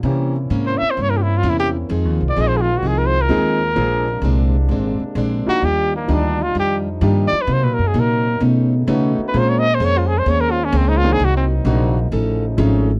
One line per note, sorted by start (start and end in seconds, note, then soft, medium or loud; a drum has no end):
0.03 0.49 C3 medium
0.03 0.36 C3 medium
0.03 0.32 E3 medium
0.03 0.32 A#3 medium
0.03 0.37 A#3 medium
0.03 1.89 A#3 medium
0.03 1.89 C4 medium
0.03 0.32 C4 medium
0.03 0.32 C#4 medium
0.03 1.89 C#4 medium
0.03 0.37 C#4 medium
0.03 0.37 E4 medium
0.03 1.89 E4 medium
0.03 0.33 G4 medium
0.50 0.79 G#2 medium
0.50 0.83 C3 medium
0.50 0.83 A#3 medium
0.50 0.83 C#4 medium
0.50 0.84 E4 medium
0.67 0.79 C5 medium
0.78 0.92 E5 loud
0.78 muted upright bass stroke soft
0.91 1.03 C5 medium
0.97 1.42 G2 medium
0.97 1.30 C3 soft
0.97 1.30 A#3 medium
0.97 1.30 C#4 soft
0.97 1.31 E4 soft
1.02 1.12 C#5 loud
1.10 1.19 A#4 medium
1.17 1.24 G4 medium
1.22 1.39 E4 medium
1.37 1.51 F4 medium
1.43 1.88 E2 loud
1.43 1.76 C3 medium
1.43 1.76 A#3 medium
1.43 1.76 C#4 medium
1.43 1.77 E4 medium
1.49 1.59 E4 medium
1.60 1.69 G4 loud
1.89 2.05 F2 medium
1.89 3.75 D#3 medium
1.89 2.22 F3 medium
1.89 3.74 G#3 medium
1.89 2.23 C4 medium
1.89 3.75 C4 medium
1.89 2.23 D#4 medium
1.89 3.75 F4 medium
1.89 2.23 G#4 medium
2.05 2.20 D#2 medium
2.21 2.35 C2 medium
2.29 2.42 D5 medium
2.36 2.82 A#1 medium
2.36 2.69 F3 medium
2.36 2.69 C4 medium
2.36 2.69 D#4 medium
2.36 2.70 G#4 medium
2.41 2.49 D#5 loud
2.48 2.59 C5 medium
2.57 2.63 G#4 medium
2.61 2.79 F4 medium
2.77 2.89 F#4 medium
2.83 3.28 C2 medium
2.83 3.16 F3 soft
2.83 3.16 C4 medium
2.83 3.17 D#4 medium
2.83 3.17 G#4 medium
2.87 2.99 G#4 medium
2.98 3.08 A#4 medium
3.06 3.23 C5 loud
3.21 4.38 A#4 medium
3.29 3.74 D#2 medium
3.29 3.57 F3 medium
3.29 3.62 F3 medium
3.29 3.57 G#3 medium
3.29 3.57 C4 medium
3.29 3.62 C4 medium
3.29 3.57 D#4 medium
3.29 3.63 D#4 medium
3.29 3.58 G#4 medium
3.29 3.63 G#4 medium
3.74 4.21 A#1 medium
3.74 4.09 A#2 medium
3.74 5.60 C3 medium
3.74 4.04 F3 medium
3.74 5.60 G#3 medium
3.74 4.09 G#3 medium
3.74 5.60 A#3 medium
3.74 4.03 A#3 medium
3.74 4.04 C4 medium
3.74 4.09 C4 medium
3.74 5.60 D4 medium
3.74 4.04 D4 medium
3.74 4.09 D4 medium
3.74 4.04 G#4 medium
4.22 4.67 C2 medium
4.22 4.55 A#2 medium
4.22 4.56 G#3 medium
4.22 4.56 C4 medium
4.22 4.56 D4 medium
4.69 4.98 G#1 medium
4.69 5.02 A#2 medium
4.69 5.03 G#3 soft
4.69 5.03 C4 medium
4.69 5.03 D4 medium
5.00 muted upright bass stroke soft
5.15 5.44 A#1 medium
5.15 5.49 A#2 medium
5.15 5.49 G#3 medium
5.15 5.49 C4 medium
5.15 5.49 D4 medium
5.46 5.60 F3 medium
5.46 5.61 A#3 medium
5.46 5.61 D4 medium
5.46 5.61 D#4 medium
5.46 5.61 F4 medium
5.46 5.66 F#4 loud
5.46 muted upright bass stroke soft
5.61 6.07 D#2 medium
5.61 5.94 D#3 soft
5.61 7.46 F3 medium
5.61 7.46 G3 medium
5.61 5.95 G3 medium
5.61 7.46 D4 medium
5.61 5.95 D4 medium
5.61 7.46 D#4 medium
5.61 5.95 F4 medium
5.61 5.94 G4 loud
5.96 6.15 A#3 medium
6.08 6.54 D2 loud
6.08 6.41 D#3 medium
6.08 6.36 F3 medium
6.08 6.42 G3 medium
6.08 6.36 A#3 medium
6.08 6.37 D4 medium
6.08 6.42 D4 medium
6.08 6.37 D#4 medium
6.08 6.42 F4 medium
6.08 6.37 G4 medium
6.14 6.44 D4 medium
6.42 6.56 F4 loud
6.55 7.00 F2 medium
6.55 6.88 D#3 soft
6.55 6.88 G3 medium
6.55 6.88 D4 medium
6.55 6.88 F4 medium
6.59 6.77 G4 medium
7.01 7.30 G2 loud
7.01 7.34 D#3 medium
7.01 7.29 F3 medium
7.01 7.34 G3 medium
7.01 7.30 A#3 medium
7.01 7.34 D4 medium
7.01 7.30 D4 medium
7.01 7.30 D#4 medium
7.01 7.35 F4 medium
7.01 7.30 G4 medium
7.28 7.43 D5 loud
7.32 muted upright bass stroke soft
7.41 7.54 B4 medium
7.47 7.63 C3 loud
7.47 7.80 C3 medium
7.47 8.40 C3 medium
7.47 8.40 F#3 medium
7.47 8.40 A#3 medium
7.47 7.81 A#3 soft
7.47 9.32 D#4 medium
7.47 7.81 D#4 medium
7.47 7.81 F#4 medium
7.53 7.65 C5 loud
7.63 7.78 A#2 medium
7.63 7.75 B4 medium
7.74 7.89 A#4 medium
7.79 7.93 F#2 medium
7.87 8.01 G#4 medium
7.94 8.39 A#2 medium
7.94 8.27 C3 medium
7.94 8.27 A#3 medium
7.94 8.27 D#4 medium
7.94 8.27 F#4 medium
7.99 8.43 A#4 medium
8.40 8.73 B2 medium
8.40 8.86 B2 medium
8.40 9.32 C#3 medium
8.40 9.32 A3 medium
8.40 8.74 A3 soft
8.40 9.32 B3 medium
8.40 8.74 C#4 medium
8.40 8.74 D#4 soft
8.87 9.20 B2 medium
8.87 9.16 C#3 loud
8.87 9.34 A3 medium
8.87 9.20 A3 medium
8.87 9.34 B3 medium
8.87 9.20 C#4 medium
8.87 9.34 C#4 medium
8.87 9.34 D#4 medium
8.87 9.21 D#4 medium
8.87 9.35 F#4 medium
9.18 muted upright bass stroke soft
9.28 9.40 B4 medium
9.33 9.79 A#2 loud
9.33 11.17 G#3 medium
9.33 9.61 G#3 medium
9.33 12.09 A#3 medium
9.33 9.66 A#3 soft
9.33 9.62 A#3 medium
9.33 12.09 C4 medium
9.33 9.62 C4 medium
9.33 11.17 C#4 medium
9.33 9.67 C#4 medium
9.33 9.62 C#4 medium
9.33 9.62 F4 medium
9.33 9.67 G#4 medium
9.33 9.67 C5 medium
9.39 9.51 C5 medium
9.49 9.60 C#5 medium
9.59 9.76 D#5 loud
9.75 9.86 C5 medium
9.80 10.25 F2 medium
9.80 10.13 A#3 medium
9.80 10.13 C#4 medium
9.80 10.13 G#4 medium
9.80 10.14 C5 medium
9.85 9.99 C#5 loud
9.97 10.09 F4 medium
10.07 10.20 G#4 loud
10.18 10.31 C5 medium
10.26 10.71 D#2 medium
10.26 10.59 A#3 medium
10.26 10.59 C#4 medium
10.26 10.60 G#4 medium
10.26 10.60 C5 medium
10.26 10.42 C#5 loud
10.40 10.53 A#4 medium
10.51 10.66 F4 medium
10.65 10.78 C#4 medium
10.72 11.18 C#2 loud
10.72 11.06 A#3 medium
10.72 11.06 C#4 medium
10.72 11.06 G#4 medium
10.72 11.06 C5 medium
10.77 10.90 C4 medium
10.88 10.99 D#4 medium
10.97 11.14 F4 loud
11.03 11.18 D#3 medium
11.03 11.18 A#3 medium
11.03 11.18 C4 medium
11.03 11.18 D4 medium
11.03 11.18 G#4 medium
11.13 11.26 G#4 loud
11.18 11.64 C2 medium
11.18 11.52 C3 soft
11.18 12.11 F#3 medium
11.18 11.52 A#3 medium
11.18 12.10 D#4 medium
11.18 11.52 D#4 medium
11.18 11.53 F#4 medium
11.25 11.37 F#4 medium
11.37 11.46 C4 medium
11.65 12.10 A#1 loud
11.65 11.98 C3 medium
11.65 11.93 D#3 medium
11.65 11.93 A#3 medium
11.65 11.99 A#3 medium
11.65 11.93 C4 medium
11.65 11.93 D4 medium
11.65 11.99 D#4 medium
11.65 11.94 F#4 medium
11.65 11.99 F#4 medium
12.11 12.57 A1 medium
12.11 12.86 C#3 medium
12.11 12.86 F3 medium
12.11 12.44 F3 medium
12.11 12.86 A3 medium
12.11 12.45 C#4 medium
12.11 12.86 D#4 medium
12.11 12.45 D#4 medium
12.11 12.45 A4 medium
12.57 13.00 G#1 loud
12.57 12.85 F3 medium
12.57 12.91 F3 medium
12.57 12.86 A3 medium
12.57 12.86 C#4 medium
12.57 12.91 C#4 medium
12.57 12.86 D#4 medium
12.57 12.91 D#4 medium
12.57 12.86 G#4 medium
12.57 12.91 A4 medium